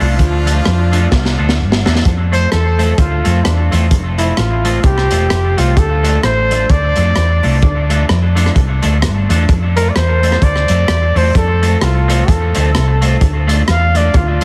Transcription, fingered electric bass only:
0, 0, Header, 1, 2, 480
1, 0, Start_track
1, 0, Key_signature, -1, "major"
1, 0, Tempo, 465116
1, 198, Time_signature, 4, 2, 24, 8
1, 14903, End_track
2, 0, Start_track
2, 0, Title_t, "Fingered electric bass"
2, 0, Program_c, 0, 33
2, 7, Note_on_c, 0, 36, 78
2, 173, Note_off_c, 0, 36, 0
2, 204, Note_on_c, 0, 38, 109
2, 609, Note_off_c, 0, 38, 0
2, 690, Note_on_c, 0, 41, 91
2, 1092, Note_off_c, 0, 41, 0
2, 1160, Note_on_c, 0, 36, 94
2, 1397, Note_off_c, 0, 36, 0
2, 1444, Note_on_c, 0, 38, 84
2, 1650, Note_on_c, 0, 31, 82
2, 1665, Note_off_c, 0, 38, 0
2, 1882, Note_off_c, 0, 31, 0
2, 1929, Note_on_c, 0, 40, 76
2, 2093, Note_off_c, 0, 40, 0
2, 2121, Note_on_c, 0, 41, 102
2, 2526, Note_off_c, 0, 41, 0
2, 2610, Note_on_c, 0, 40, 83
2, 3011, Note_off_c, 0, 40, 0
2, 3081, Note_on_c, 0, 38, 94
2, 3317, Note_off_c, 0, 38, 0
2, 3365, Note_on_c, 0, 41, 88
2, 3530, Note_off_c, 0, 41, 0
2, 3571, Note_on_c, 0, 40, 89
2, 3802, Note_off_c, 0, 40, 0
2, 3849, Note_on_c, 0, 40, 88
2, 4012, Note_off_c, 0, 40, 0
2, 4041, Note_on_c, 0, 29, 102
2, 4446, Note_off_c, 0, 29, 0
2, 4522, Note_on_c, 0, 33, 95
2, 4926, Note_off_c, 0, 33, 0
2, 4996, Note_on_c, 0, 36, 99
2, 5233, Note_off_c, 0, 36, 0
2, 5280, Note_on_c, 0, 28, 86
2, 5447, Note_off_c, 0, 28, 0
2, 5484, Note_on_c, 0, 29, 85
2, 5718, Note_off_c, 0, 29, 0
2, 5765, Note_on_c, 0, 36, 77
2, 5930, Note_off_c, 0, 36, 0
2, 5956, Note_on_c, 0, 38, 105
2, 6362, Note_off_c, 0, 38, 0
2, 6435, Note_on_c, 0, 33, 95
2, 6842, Note_off_c, 0, 33, 0
2, 6916, Note_on_c, 0, 38, 95
2, 7153, Note_off_c, 0, 38, 0
2, 7197, Note_on_c, 0, 41, 93
2, 7365, Note_off_c, 0, 41, 0
2, 7396, Note_on_c, 0, 40, 83
2, 7633, Note_off_c, 0, 40, 0
2, 7681, Note_on_c, 0, 36, 76
2, 7848, Note_off_c, 0, 36, 0
2, 7874, Note_on_c, 0, 38, 115
2, 8282, Note_off_c, 0, 38, 0
2, 8354, Note_on_c, 0, 41, 85
2, 8762, Note_off_c, 0, 41, 0
2, 8836, Note_on_c, 0, 36, 98
2, 9074, Note_off_c, 0, 36, 0
2, 9123, Note_on_c, 0, 38, 95
2, 9319, Note_on_c, 0, 31, 76
2, 9334, Note_off_c, 0, 38, 0
2, 9555, Note_off_c, 0, 31, 0
2, 9597, Note_on_c, 0, 40, 86
2, 9766, Note_off_c, 0, 40, 0
2, 9797, Note_on_c, 0, 41, 102
2, 10204, Note_off_c, 0, 41, 0
2, 10279, Note_on_c, 0, 40, 83
2, 10685, Note_off_c, 0, 40, 0
2, 10758, Note_on_c, 0, 38, 90
2, 10995, Note_off_c, 0, 38, 0
2, 11036, Note_on_c, 0, 41, 95
2, 11206, Note_off_c, 0, 41, 0
2, 11234, Note_on_c, 0, 40, 78
2, 11473, Note_off_c, 0, 40, 0
2, 11513, Note_on_c, 0, 40, 90
2, 11684, Note_off_c, 0, 40, 0
2, 11715, Note_on_c, 0, 41, 109
2, 12123, Note_off_c, 0, 41, 0
2, 12200, Note_on_c, 0, 36, 92
2, 12606, Note_off_c, 0, 36, 0
2, 12677, Note_on_c, 0, 40, 103
2, 12915, Note_off_c, 0, 40, 0
2, 12965, Note_on_c, 0, 38, 100
2, 13131, Note_off_c, 0, 38, 0
2, 13170, Note_on_c, 0, 36, 91
2, 13571, Note_off_c, 0, 36, 0
2, 13639, Note_on_c, 0, 38, 103
2, 14045, Note_off_c, 0, 38, 0
2, 14125, Note_on_c, 0, 40, 103
2, 14528, Note_off_c, 0, 40, 0
2, 14598, Note_on_c, 0, 38, 97
2, 14834, Note_off_c, 0, 38, 0
2, 14903, End_track
0, 0, End_of_file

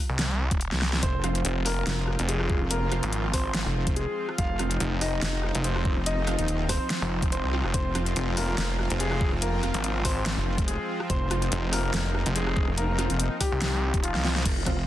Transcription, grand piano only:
0, 0, Header, 1, 2, 480
1, 0, Start_track
1, 0, Key_signature, -4, "minor"
1, 0, Tempo, 419580
1, 1176, Time_signature, 4, 2, 24, 8
1, 17010, End_track
2, 0, Start_track
2, 0, Title_t, "Grand piano"
2, 0, Program_c, 0, 0
2, 1176, Note_on_c, 0, 72, 99
2, 1177, Note_on_c, 0, 60, 75
2, 1808, Note_off_c, 0, 60, 0
2, 1808, Note_off_c, 0, 72, 0
2, 1896, Note_on_c, 0, 58, 78
2, 1896, Note_on_c, 0, 70, 94
2, 2528, Note_off_c, 0, 58, 0
2, 2528, Note_off_c, 0, 70, 0
2, 2615, Note_on_c, 0, 68, 80
2, 2616, Note_on_c, 0, 56, 71
2, 2941, Note_off_c, 0, 68, 0
2, 2942, Note_off_c, 0, 56, 0
2, 3095, Note_on_c, 0, 58, 77
2, 3095, Note_on_c, 0, 70, 93
2, 3727, Note_off_c, 0, 58, 0
2, 3727, Note_off_c, 0, 70, 0
2, 3816, Note_on_c, 0, 60, 76
2, 3816, Note_on_c, 0, 72, 96
2, 4448, Note_off_c, 0, 60, 0
2, 4448, Note_off_c, 0, 72, 0
2, 4535, Note_on_c, 0, 68, 83
2, 4536, Note_on_c, 0, 56, 74
2, 4861, Note_off_c, 0, 68, 0
2, 4862, Note_off_c, 0, 56, 0
2, 5016, Note_on_c, 0, 65, 77
2, 5017, Note_on_c, 0, 77, 97
2, 5647, Note_off_c, 0, 65, 0
2, 5648, Note_off_c, 0, 77, 0
2, 5737, Note_on_c, 0, 63, 77
2, 5737, Note_on_c, 0, 75, 93
2, 6368, Note_off_c, 0, 63, 0
2, 6368, Note_off_c, 0, 75, 0
2, 6456, Note_on_c, 0, 60, 75
2, 6456, Note_on_c, 0, 72, 85
2, 6782, Note_off_c, 0, 60, 0
2, 6782, Note_off_c, 0, 72, 0
2, 6937, Note_on_c, 0, 63, 77
2, 6937, Note_on_c, 0, 75, 87
2, 7568, Note_off_c, 0, 63, 0
2, 7568, Note_off_c, 0, 75, 0
2, 7657, Note_on_c, 0, 60, 76
2, 7657, Note_on_c, 0, 72, 94
2, 8288, Note_off_c, 0, 60, 0
2, 8288, Note_off_c, 0, 72, 0
2, 8374, Note_on_c, 0, 72, 82
2, 8375, Note_on_c, 0, 60, 69
2, 8701, Note_off_c, 0, 60, 0
2, 8701, Note_off_c, 0, 72, 0
2, 8854, Note_on_c, 0, 60, 71
2, 8855, Note_on_c, 0, 72, 95
2, 9487, Note_off_c, 0, 60, 0
2, 9487, Note_off_c, 0, 72, 0
2, 9576, Note_on_c, 0, 58, 80
2, 9576, Note_on_c, 0, 70, 97
2, 10207, Note_off_c, 0, 58, 0
2, 10207, Note_off_c, 0, 70, 0
2, 10297, Note_on_c, 0, 56, 70
2, 10297, Note_on_c, 0, 68, 87
2, 10622, Note_off_c, 0, 56, 0
2, 10622, Note_off_c, 0, 68, 0
2, 10776, Note_on_c, 0, 58, 73
2, 10776, Note_on_c, 0, 70, 91
2, 11408, Note_off_c, 0, 58, 0
2, 11408, Note_off_c, 0, 70, 0
2, 11497, Note_on_c, 0, 60, 80
2, 11497, Note_on_c, 0, 72, 98
2, 12128, Note_off_c, 0, 60, 0
2, 12128, Note_off_c, 0, 72, 0
2, 12216, Note_on_c, 0, 56, 73
2, 12216, Note_on_c, 0, 68, 87
2, 12542, Note_off_c, 0, 56, 0
2, 12542, Note_off_c, 0, 68, 0
2, 12697, Note_on_c, 0, 60, 75
2, 12697, Note_on_c, 0, 72, 97
2, 13328, Note_off_c, 0, 60, 0
2, 13328, Note_off_c, 0, 72, 0
2, 13417, Note_on_c, 0, 58, 79
2, 13417, Note_on_c, 0, 70, 95
2, 14048, Note_off_c, 0, 58, 0
2, 14048, Note_off_c, 0, 70, 0
2, 14136, Note_on_c, 0, 56, 72
2, 14137, Note_on_c, 0, 68, 88
2, 14462, Note_off_c, 0, 56, 0
2, 14462, Note_off_c, 0, 68, 0
2, 14617, Note_on_c, 0, 58, 77
2, 14617, Note_on_c, 0, 70, 93
2, 15248, Note_off_c, 0, 58, 0
2, 15248, Note_off_c, 0, 70, 0
2, 15337, Note_on_c, 0, 67, 95
2, 15338, Note_on_c, 0, 55, 77
2, 15968, Note_off_c, 0, 67, 0
2, 15969, Note_off_c, 0, 55, 0
2, 16055, Note_on_c, 0, 53, 75
2, 16056, Note_on_c, 0, 65, 87
2, 16381, Note_off_c, 0, 53, 0
2, 16382, Note_off_c, 0, 65, 0
2, 17010, End_track
0, 0, End_of_file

